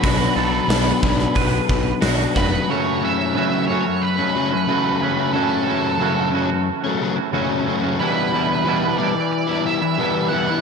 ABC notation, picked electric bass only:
X:1
M:4/4
L:1/8
Q:1/4=90
K:F#phr
V:1 name="Picked electric bass" clef=bass
B,,, B,,, B,,, B,,, B,,, B,,, B,,, ^E,,, | z8 | z8 | z8 |]